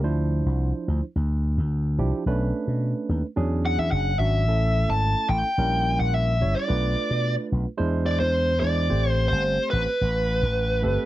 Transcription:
0.04 D2 F3 D4 E4 C5
0.46 C2
0.88 D2
1.16 D2
1.58 D2
1.99 C2 F3 D4 E4 G4
2.13 muted slap bass stroke
2.26 B1 A3 C#4 D4 B4
2.68 B2
3.09 D#2
3.36 E2 F#3 C#4 D4 G#4
3.66 F#5
3.78 E2 E5
3.91 F#1 F#5
4.19 G#1 F#3 C#4 D4 F#4 E5
4.46 A1 A3 C#4 E4 A4
4.88 G#1 A5
5.29 A1 G5
5.58 A#1 G3 C#4 E4 A#4
5.99 A#1 F#5
6.14 E5
6.41 G1 G3 C#4 E4 C#5
6.55 D5, muted slap bass stroke
6.68 B1 A3 D4 F4 B4
7.11 B2
7.52 B1
7.77 E2 G#3 D4 E4 C5
8.06 D5
8.20 E2 C5
8.60 E2 G#3 D4 E4 C5 D5
8.90 A1 A3 C4 G4 C5
9.10 C5
9.28 G1 C5
9.70 A1 B4
10.01 A1
10.43 A1
10.82 G1 A3 C4 G4 A4
10.98 muted slap bass stroke

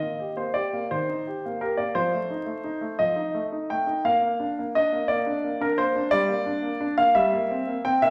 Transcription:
Already playing: D#5
0.02 A#3
0.20 G4
0.36 A#3 C5
0.54 G4 D5
0.73 A#3
0.91 D#3 C5
1.09 D#4
1.27 G4
1.46 A#3
1.61 G4 A#4
1.77 A#3 D5
1.95 F3 C5
2.14 A3
2.30 D#4
2.46 A3
2.64 D#4
2.81 A3
2.99 F3 D#5
3.16 D#4
3.34 A3
3.52 D#4
3.70 A3 G5
3.87 D#4
4.05 A#3 F5
4.22 A#3
4.40 D4
4.59 A#3
4.75 D4 D#5
4.92 A#3
5.08 A#3 D5
5.26 D4
5.44 A#3
5.61 D4 A#4
5.78 A#3 C5
5.96 D4
6.11 G3 D5
6.29 A#3
6.46 D4
6.63 A#3
6.81 D4
6.98 A#3 F5
7.15 G3 E5
7.33 A#3
7.51 C4
7.67 A#3
7.85 C4 G5
8.02 A#3 E5

